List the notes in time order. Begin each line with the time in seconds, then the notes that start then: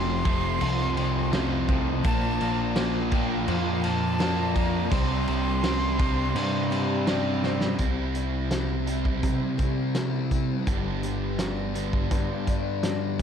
Already playing: F1 F2 C3 F3 A3 C4 F4 C6
0.25 F2 C3 F3 A3 C4, kick, crash
0.60 C2 F2 C3 F3, crash
0.96 F2 C3 F3, crash
1.32 F2 C3 F3 A3 C4, snare, crash
1.68 F2 C3 F3 A3, kick, crash
2.03 A#1 A#2 F3 A#3 D4 A5, kick, crash
2.41 A#1 A#2 F3 A#3, crash
2.75 A#2 F3 A#3, snare, crash
3.11 A#2 F3 A#3 D4 G5, kick, crash
3.46 F2 A#2 F3 A#3 F5, crash
3.82 A#2 F3 A#3 A5, crash
4.19 A#2 F3 A#3 D4, snare, crash
4.55 A#2 F3 A#3 A#5, kick, crash
4.90 C2 C3 G3 C4 D4 C6, kick, crash
5.27 C2 C3 G3 C4, crash
5.63 C3 G3 C4, snare, crash
5.98 C3 G3 C4 D4, kick, crash
6.34 G2 C3 G3 C4, crash
6.71 C3 G3 C4, crash
7.06 C3 G3 C4 D4, snare, crash
7.43 C3 G3 C4, snare
7.61 snare
7.78 C2 C3 G3 C4 E4, kick, closed hi-hat
8.14 G3 C4 E4, closed hi-hat
8.51 C3 G3 A3 C4, snare, closed hi-hat
8.87 C3 G3 C4 E4, closed hi-hat
9.05 kick
9.23 C3 G3, kick, closed hi-hat
9.58 G3 A3 C4, kick, closed hi-hat
9.94 C3 G3 C4 E4, snare, closed hi-hat
10.31 G3 A3 C4, kick, closed hi-hat
10.66 G1 G2 D3 G3 B3 D4, kick, closed hi-hat
11.03 D3 G3 G4, closed hi-hat
11.39 G2 D3 G3 D4, snare, closed hi-hat
11.74 G2 D3 G3 B3 D4, closed hi-hat
11.93 kick
12.11 G2 B3, kick, closed hi-hat
12.47 D3 G3 D4, kick, closed hi-hat
12.83 G2 D3 G3 G4, snare, closed hi-hat
13.19 G3